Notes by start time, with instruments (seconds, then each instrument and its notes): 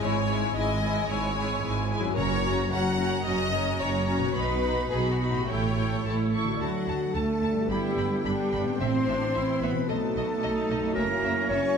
Already playing: harp G#2 G#3 C#4 E4 G#4
0.00 double bass section G#1, cello section G#2, viola section G#3 E4, violin section C#5 G#5
0.27 viola section G#3 E4, violin section G#5
0.55 double bass section G#1, cello section G#2, viola section G#3 E4, violin section D#5 G#5
0.81 viola section G#3 E4, violin section G#5
1.09 double bass section G#1, cello section G#2, viola section G#3 E4, violin section C#5 G#5
1.36 viola section G#3 E4, violin section G#5
1.63 double bass section G#1, cello section G#2, viola section G#3 E4, violin section G#5
1.91 viola section G#3 E4, violin section G#5
2.00 harp F#2
2.05 harp C#4
2.09 harp F#4
2.13 viola section C#4 F#4, harp A#4
2.17 double bass section F#1, timpani F#2, cello section F#2, violin section C#5 A#5
2.45 viola section C#4 F#4, violin section A#5
2.71 double bass section F#1, cello section F#2, viola section C#4 F#4, violin section F#5 A#5
2.99 viola section C#4 F#4, violin section A#5
3.25 double bass section F#1, cello section F#2, viola section C#4 F#4, violin section D#5 A#5
3.52 viola section C#4 F#4, violin section A#5
3.80 double bass section F#1, cello section F#2, viola section C#4 F#4, violin section C#5 A#5
4.07 viola section C#4 F#4, violin section A#5
4.18 harp B2
4.22 harp D#4
4.27 harp F#4
4.31 viola section F#4, harp B4
4.35 double bass section B1, cello section B2, viola section D#4, violin section B4 B5
4.62 viola section D#4 F#4, violin section B5
4.91 double bass section B1, cello section B2, viola section D#4 F#4, violin section G#4 B5
5.10 violin section F#4
5.20 viola section D#4 F#4, violin section B5
5.29 harp A2, violin section F#4
5.36 harp E4
5.40 harp G4
5.45 violin section C#5, harp E5
5.49 double bass section A1, cello section A2, viola section E4 A4, violin section G5
5.78 viola section E4 A4, violin section G5
6.05 double bass section A1, cello section A2, viola section E4 A4, violin section A5
6.34 viola section E4 A4, violin section C#6
6.44 harp D3
6.48 harp F#4
6.52 harp A4
6.57 double bass section D2, trombone section D3 A3, clarinet F#4, harp D5
6.61 cello section F#3, violin section F#5 A5
6.88 double bass section D2, violin section A5
7.14 double bass section D2, cello section A3, clarinet A4, violin section A5
7.42 double bass section D2, violin section A5
7.52 harp G2
7.56 harp D4
7.61 harp G4
7.65 double bass section G1, harp B4
7.70 cello section G3, trombone section B3, viola section E4, clarinet G4, violin section G5 B5
7.97 double bass section G1, violin section B5
8.23 double bass section G1, cello section G3, viola section D4, clarinet G4, violin section G5 B5
8.53 double bass section G1, violin section B5
8.62 harp A2
8.67 harp C4
8.71 harp E4
8.76 harp A4
8.80 double bass section A1, timpani A2, trombone section E3 C4, viola section C4, cello section C4, clarinet C5, violin section E5 C6
9.08 double bass section A1, viola section D4, violin section E5
9.35 double bass section A1, viola section E4, violin section E5
9.61 double bass section A1, cello section B3, viola section C4, clarinet B4, violin section E5 B5
9.71 harp B2
9.76 harp B3
9.81 harp D#4
9.85 double bass section B1, viola section B3, harp F#4, clarinet A4, violin section D#5 A5
9.90 trombone section F#3 D#4, cello section A3
10.16 double bass section B1, violin section D#5
10.42 double bass section B1, viola section D#4, violin section D#5
10.70 double bass section B1, violin section D#5
10.79 harp F#2
10.83 harp C#4
10.88 harp E4
10.92 harp F#4, clarinet A#4
10.96 double bass section F#1, cello section A#3, viola section C#4, trombone section E4, violin section E5 A#5
11.24 double bass section F#1, violin section E5
11.49 double bass section F#1, cello section C#4, clarinet C#5, violin section E5 C#6